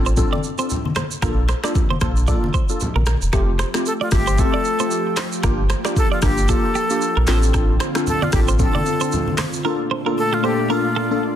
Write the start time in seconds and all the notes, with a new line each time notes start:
Already playing: A1
0.06 C5, shaker
0.17 C4 D4 F4 A4, kick, low conga, shaker
0.33 D5, high conga
0.43 shaker
0.58 C4 D4 F4 A4 C5, shaker
0.70 low conga, shaker
0.85 high conga
0.96 C5, finger snap, cross-stick, high conga, shaker
1.11 shaker
1.22 A#1 A#3 D4 F4 A4 A#4, finger snap, kick, cross-stick, shaker
1.49 C5, finger snap, cross-stick, shaker
1.64 A#3 D4 F4 A4 D5, finger snap, cross-stick, shaker
1.75 kick, low conga, shaker
1.90 C5, high conga
2.01 A#1 A#3 D4 F4 A4 C5, finger snap, kick, cross-stick, shaker
2.16 shaker
2.27 A#3 D4 F4 A4 D5, kick, low conga, shaker
2.44 high conga
2.54 C5, kick, shaker
2.69 A#3 D4 F4 A4, shaker
2.80 low conga, shaker
2.96 A#1 A#4, high conga
3.06 A#4, finger snap, cross-stick, high conga, shaker
3.22 E1, shaker
3.33 F1 F3 A3 C4 F4 G4 A4, finger snap, kick, cross-stick, shaker
3.59 C5, finger snap, cross-stick, shaker
3.74 A3 C4 F4 G4, finger snap, cross-stick, shaker
3.86 A4, shaker
4.01 F4 D5
4.11 G1 A3 C4 F4 G4, finger snap, kick, cross-stick, open hi-hat, shaker
4.27 C5, shaker
4.38 A3 C4 F4 G4 A4, kick, shaker
4.54 D5
4.65 shaker
4.80 A3 C4 F4 G4 C5, shaker
4.91 shaker
5.17 C5, finger snap, cross-stick, clap, open hi-hat, shaker
5.32 shaker
5.43 G1 A#3 D4 F4 G4 A#4, finger snap, kick, cross-stick, shaker
5.70 C5, finger snap, cross-stick, shaker
5.85 A#3 D4 F4 G4 D5, finger snap, cross-stick, shaker
5.96 A4, kick, shaker
6.12 F4 D5
6.22 G1 A#3 D4 F4 G4 A#4, finger snap, kick, cross-stick, open hi-hat, shaker
6.38 shaker
6.48 A#3 D4 F4 G4 A4, kick, shaker
6.75 G4, shaker
6.90 A#3 D4 F4 G4, shaker
7.01 shaker
7.17 A#1 A#4
7.27 A1 D3 C4 D4 F4 A4 C5, finger snap, cross-stick, clap, open hi-hat, shaker
7.43 shaker
7.54 C4 D4 F4 A4, finger snap, kick, cross-stick, shaker
7.80 C5, finger snap, cross-stick, shaker
7.95 C4 D4 F4 A4, finger snap, cross-stick, shaker
8.07 A4, low conga, shaker
8.22 F4 D5, high conga
8.32 A1 C4 D4 F4 G4 A4, finger snap, kick, cross-stick, open hi-hat, shaker
8.48 C5, shaker
8.59 C4 D4 F4 A4, kick, low conga, shaker
8.75 D5, high conga
8.86 shaker
9.01 C4 D4 F4 A4 C5, shaker
9.12 low conga, shaker
9.27 high conga
9.38 C5, finger snap, cross-stick, clap, open hi-hat, high conga, shaker
9.53 shaker
9.64 A#2 A3 A#3 D4 F4 A4 A#4
9.91 C5
10.06 A#3 D4 F4 A4 A#4
10.18 A4
10.33 F4 A4
10.43 A#3 D4 F4 G4 A4 C5
10.69 A#3 D4 F4 A4 A#4
10.96 A4
11.11 A#3 D4 F4 A4